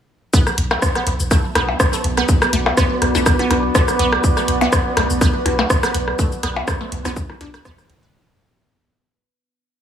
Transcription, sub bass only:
0.58 B1
1.07 B1
1.20 B1
1.55 B1
2.04 B1
2.53 B1
3.02 B1
3.15 B1
3.51 B1
3.99 B1
4.48 B1
4.97 B1
5.10 B1
5.46 B1
5.95 B1
6.43 B1
6.92 B1
7.05 B1
7.41 B1
7.90 B1

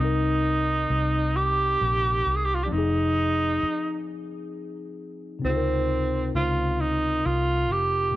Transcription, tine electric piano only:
Already playing: C3 C4
0.01 D#4 A#4
2.67 F3 C4
2.74 D#4 G#4
5.39 C3 C4
5.45 D#4 F4
5.50 G#4
5.56 A#4
8.11 A#2

